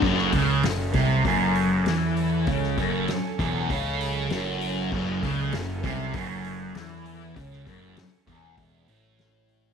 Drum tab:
CC |x---------------|----------------|x---------------|----------------|
HH |--o-o-o-o-o-o-o-|o-o-o-o-o-o-o-o-|--o-o-o-o-o-o-o-|o-o-o-o-o-o-o-o-|
SD |-o--o-------o---|-o--o-------o---|----o-------o---|-o--o-------o---|
BD |o-o---o-o-------|o-o---o-o-------|o-o---o-o-------|o-o---o-o-------|